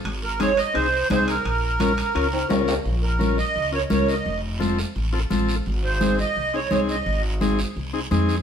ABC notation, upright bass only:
X:1
M:4/4
L:1/8
Q:1/4=171
K:Bbm
V:1 name="Upright bass" clef=bass
A,,,4 C,,2 C,,2 | B,,,4 D,,2 D,,2 | B,,,4 D,,2 D,,2 | F,,,4 =A,,,2 A,,,2 |
A,,,4 C,,2 C,,2 | A,,,4 C,,2 F,,2 |]